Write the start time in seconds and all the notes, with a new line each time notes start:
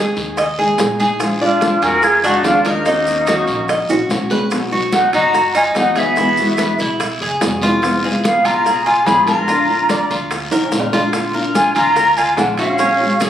Already playing: G#1 D#3 G#4
0.00 G#3 D#4 G#4
0.17 D#2, high bongo, high conga, short guiro, maracas
0.37 D#5, muted nylon-string guitar stroke, high bongo, high conga, high timbale, long guiro, maracas
0.58 G#3 D#4 G#4, high bongo, high conga
0.78 A#1 D#3 G#3 D#4 G#4, high bongo, low bongo, high conga, high timbale, low timbale, short guiro, maracas
0.99 G#3 D#4 G#4, high bongo, high conga, short guiro, maracas
1.20 F3 G#3 D4 F4, high bongo, high conga, high timbale, long guiro, maracas
1.41 G#3 D4 F4 D5, high conga
1.61 F3 G#3 D4 F4, high bongo, high conga, high timbale, low timbale, short guiro, maracas
1.82 F2 F#4 G#4 A#4, high conga, high timbale, short guiro, maracas
2.02 F4 G#4, muted nylon-string guitar stroke, high bongo, high conga, long guiro, maracas
2.23 G#3 D4 D#4 F4 F#4, high conga, high timbale, maracas
2.43 D#2 F3 G#3 D4 F4, high bongo, low bongo, high conga, high timbale, low timbale, short guiro, maracas
2.64 G#3 A#3 D4 D#4 F4 A#4, high conga, high timbale, short guiro, maracas
2.85 D#3 A#3 C#4 D#4 F#4, high bongo, high conga, long guiro, maracas
3.07 A#3 C#4 F#4, high conga, maracas
3.27 D#3 A#3 C#4 F#4, high bongo, high conga, high timbale, low timbale, short guiro, maracas
3.32 F#4
3.47 A#1, high bongo, high conga, short guiro, maracas
3.68 D#5, muted nylon-string guitar stroke, high bongo, high conga, high timbale, long guiro, maracas
3.89 A#1 A#3 C#4 F#4, high bongo, high conga, high timbale, maracas
4.09 B1 D#3 A#3 C#4 F#4, high bongo, low bongo, high conga, short guiro, maracas
4.30 A#3 C#4 F#4 B4, high conga, low timbale, short guiro, maracas
4.51 B2 F#3 B3 D#4 F#4, high bongo, high conga, high timbale, long guiro, maracas
4.72 F#3 B3 D#4 F#4, high conga
4.92 D#4 F#5, high bongo, high conga, high timbale, low timbale, short guiro, maracas
5.13 F#2 D#4 F#4 A#5, high conga, high timbale, short guiro, maracas
5.34 F#4, muted nylon-string guitar stroke, high bongo, high conga, long guiro, maracas
5.55 D#4 F4 G#5, high conga, high timbale, maracas
5.75 E2 F#3 B3 D#4 F#4 F#5, high bongo, low bongo, high conga, high timbale, low timbale, short guiro, maracas
5.96 F#3 B3 D#4 F#4 G#4 E5, high timbale, short guiro, maracas
6.16 B2 E3 G#3 B3 E4, high bongo, high conga, long guiro, maracas
6.20 F#4
6.37 E3 G#3 B3 F#4, high conga, maracas
6.57 B4, high bongo, high conga, high timbale, low timbale, short guiro, maracas
6.79 B1 E4, high bongo, high conga, short guiro, maracas
7.00 muted nylon-string guitar stroke, high bongo, high conga, high timbale, long guiro, maracas
7.21 F#1 G#4, high bongo, high conga
7.41 F1 E3 G#3 B3 F#4, high bongo, low bongo, high conga, high timbale, low timbale, short guiro, maracas
7.62 E3 G#3 B3 F4 F#4, high bongo, high conga, short guiro, maracas
7.82 F3 G#3 B3, high bongo, high conga, high timbale, long guiro, maracas
7.87 F4
8.04 G#3 B3 F4 G#4, high conga
8.24 B3 F5, high bongo, high conga, high timbale, low timbale, short guiro, maracas
8.44 B1 F4 A#5, high conga, high timbale, short guiro, maracas
8.65 G#4, muted nylon-string guitar stroke, high bongo, high conga, long guiro, maracas
8.84 F4 G#5, high conga, high timbale
9.04 A#1 F3 G#4 B5, high bongo, low bongo, high conga, high timbale, low timbale, short guiro, maracas
9.09 G#3 B3 F4
9.25 F4 A#4 A#5, high conga, high timbale, short guiro, maracas
9.30 G#3 B3
9.48 D3 A#3 D4 F4, high bongo, long guiro, maracas
9.69 A#3 D4 F4, high conga
9.89 D5, high bongo, high conga, high timbale, low timbale, short guiro, maracas
10.10 D2 F4, high bongo, high conga, short guiro, maracas
10.31 muted nylon-string guitar stroke, high bongo, high conga, high timbale, long guiro, maracas
10.51 B1 A#4, high bongo, high conga, high timbale, maracas
10.65 high timbale
10.72 A#1 D3 A#3 D4 F4, high bongo, low bongo, high conga, short guiro, maracas
10.80 low timbale
10.92 A#3 D4 F4, high bongo, high conga, low timbale, short guiro, maracas
11.13 D3 A#3 D4 F4, high bongo, high conga, high timbale, long guiro, maracas
11.34 A#3 D4 F4 A#4, high conga
11.55 F4 G#5, high bongo, high conga, high timbale, low timbale, short guiro, maracas
11.75 D2 F4 A#5, high conga, high timbale, short guiro, maracas
11.96 A#4, muted nylon-string guitar stroke, high bongo, high conga, long guiro, maracas
12.15 F4 G#5, high conga, high timbale, maracas
12.36 A#1 D3 A#3 D4 F#5, high bongo, low bongo, high conga, high timbale, low timbale, short guiro, maracas
12.40 D4 F4
12.57 C#4 D4 F4 F#4 F5, high timbale, short guiro, maracas
12.61 A#3
12.78 F#3 G#3 C#4 F#4, high bongo, high conga, long guiro, maracas
13.01 G#3 C#4 F#4, high conga
13.20 G#4, high bongo, high conga, high timbale, low timbale, short guiro, maracas